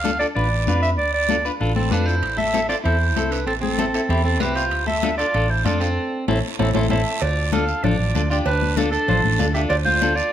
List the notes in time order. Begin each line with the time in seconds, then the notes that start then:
Already playing: D2 F5
0.04 D4 F4 A4, high conga, short guiro
0.20 D4 F4 A4 D5, short guiro
0.35 A1 D4 F4 B4 D5, high conga, long guiro
0.67 F2 D4 F4 B4, high conga, short guiro
0.82 E5, short guiro
0.98 D2 D5, high conga, long guiro
1.14 D5
1.29 D4 F4 A4, high conga, short guiro
1.45 D4 F4 B4, short guiro
1.60 A1 D4 F4 A4, high conga, long guiro
1.76 C4 A4, high conga
1.91 F2 D4 F4 A4 B4, high conga, short guiro
2.05 E4 C5, short guiro
2.23 A1, high conga, high timbale, long guiro
2.37 A4 E5, high conga
2.53 C4 E4 A4, high conga, high timbale, short guiro
2.69 C4 E4 F4 A4 D5, high timbale, short guiro
2.84 E2 C4 E4 A4 C5, high conga, high timbale, long guiro
3.16 C2 C4 E4 A4, high conga, high timbale, low timbale, short guiro
3.31 D4 B4, high timbale, short guiro
3.46 A1 C4 A4, high conga, high timbale, long guiro
3.61 C4 A4, high conga
3.78 C4 E4 A4, high conga, high timbale, short guiro
3.94 C4 E4 A4, high timbale, short guiro
4.09 E2 C4 E4 G4, high conga, high timbale, long guiro
4.25 C4 A4
4.40 C2 C4 E4 G4 B4, high conga, high timbale, low timbale, short guiro
4.55 F4 C5, high timbale, short guiro
4.71 D2, high conga, high timbale, long guiro
4.87 A4 E5, high conga
5.03 D4 F4 A4, high conga, high timbale, short guiro
5.18 D4 F4 A4 D5, high timbale, short guiro
5.34 A1 D4 F4 A4, high conga, high timbale, long guiro
5.50 E4 C5
5.65 F2 D4 F4 A4 D5, high conga, high timbale, short guiro
5.80 C4 A4, high timbale, short guiro
6.28 A1 C4 E4 A4, high conga, high timbale, long guiro
6.59 A1 C4 E4 A4, high conga, high timbale
6.74 A1 C4 E4 A4, high conga, high timbale, long guiro
6.89 A1 C4 E4 A4 E5, high conga, high timbale, long guiro
7.21 D2 F4 D5, cowbell, high conga, long guiro
7.52 D4 F4 A4 F5, cowbell, high conga, short guiro
7.68 short guiro
7.84 A1 D4 F4 A4 D5, cowbell, high conga, low conga, long guiro
7.99 A1
8.15 D2 D4 F4 A4, cowbell, high conga, short guiro
8.30 D4 F4 G4 D5, short guiro
8.46 D2 D4 B4, cowbell, high conga, long guiro
8.62 high conga
8.77 D4 F4 A4, cowbell, high conga, short guiro
8.92 D4 A4, short guiro
9.08 A1 D4 F4 C5, cowbell, high conga, low conga, long guiro
9.24 A1, high conga
9.39 D2 D4 F4 A4, cowbell, high conga, low timbale, short guiro
9.54 D4 F4 G4 A4 E5, short guiro
9.69 D2 F4 D5, cowbell, high conga, long guiro
9.85 F4 C5, high conga
10.01 D4 F4 A4, cowbell, high conga, short guiro
10.15 F4 D5, short guiro